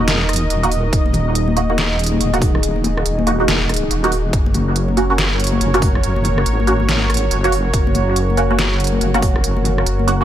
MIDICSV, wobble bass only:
0, 0, Header, 1, 2, 480
1, 0, Start_track
1, 0, Tempo, 425532
1, 1046, Time_signature, 4, 2, 24, 8
1, 11552, End_track
2, 0, Start_track
2, 0, Title_t, "Wobble bass"
2, 0, Program_c, 0, 39
2, 0, Note_on_c, 0, 28, 100
2, 551, Note_off_c, 0, 28, 0
2, 564, Note_on_c, 0, 27, 99
2, 1030, Note_off_c, 0, 27, 0
2, 1046, Note_on_c, 0, 27, 93
2, 2471, Note_off_c, 0, 27, 0
2, 2486, Note_on_c, 0, 27, 100
2, 3431, Note_off_c, 0, 27, 0
2, 3447, Note_on_c, 0, 27, 97
2, 3912, Note_off_c, 0, 27, 0
2, 3927, Note_on_c, 0, 28, 97
2, 4392, Note_off_c, 0, 28, 0
2, 4407, Note_on_c, 0, 27, 96
2, 4872, Note_off_c, 0, 27, 0
2, 4886, Note_on_c, 0, 30, 100
2, 6311, Note_off_c, 0, 30, 0
2, 6326, Note_on_c, 0, 30, 97
2, 7271, Note_off_c, 0, 30, 0
2, 7286, Note_on_c, 0, 32, 97
2, 8231, Note_off_c, 0, 32, 0
2, 8247, Note_on_c, 0, 30, 97
2, 8712, Note_off_c, 0, 30, 0
2, 8726, Note_on_c, 0, 30, 99
2, 10151, Note_off_c, 0, 30, 0
2, 10167, Note_on_c, 0, 30, 95
2, 11112, Note_off_c, 0, 30, 0
2, 11126, Note_on_c, 0, 30, 96
2, 11552, Note_off_c, 0, 30, 0
2, 11552, End_track
0, 0, End_of_file